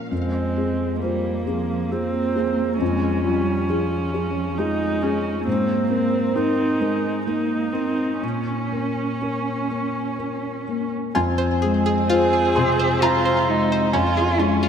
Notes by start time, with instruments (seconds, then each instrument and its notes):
Already playing: felt piano F3 A#3 C#4 A#4
0.10 felt piano F2, cello G#3, viola C4
0.57 felt piano C4 G#4
1.00 cello G3, viola A#3, felt piano F4 C5
1.45 cello F3, felt piano C4 G#4
1.92 cello A#3, viola C4, felt piano F4 G#4
2.35 felt piano C4 G#4
2.79 felt piano F2, cello G#3, viola C#4
3.24 cello G3, felt piano C#4 F4
3.69 cello F3, felt piano F4 G#4
4.14 felt piano C#4 G#4
4.58 cello G#3, viola D#4, felt piano F4 G#4
5.03 viola C#4, felt piano C#4 G#4
5.45 felt piano G#2, cello A#3, viola C4
5.90 felt piano C4 A#4, viola C4
6.35 cello C4, felt piano D#4 A#4, viola D#4
6.80 cello G#3, felt piano C4 A#4
7.26 cello A#3, felt piano D#4 A#4, viola D#4
7.73 felt piano C4 A#4, cello C4
8.22 felt piano A#2, cello C#4, viola C#4
8.72 felt piano A#3 A#4
9.21 felt piano C#4 A#4
9.71 felt piano A#3 A#4
10.19 felt piano C#4 A#4
10.68 felt piano A#3 A#4
11.15 felt piano F2 G#5, viola C4, synth pluck F4
11.38 synth pluck C5
11.62 felt piano G#3, synth pluck G#4
11.86 synth pluck G#4
12.10 synth pluck F4, felt piano F4 C5, cello G#4
12.33 synth pluck G#4
12.56 felt piano C3 C6, synth pluck G#4
12.79 synth pluck C5
13.02 synth pluck F4, felt piano F4 C5 A#5, cello F4
13.25 synth pluck C5
13.48 felt piano G#3, cello D#4
13.72 synth pluck C5
13.93 felt piano F2 G#5, synth pluck C#4, viola C#4, cello F4
14.17 synth pluck G#4
14.38 felt piano G#3, cello C#4, synth pluck F4
14.63 synth pluck F4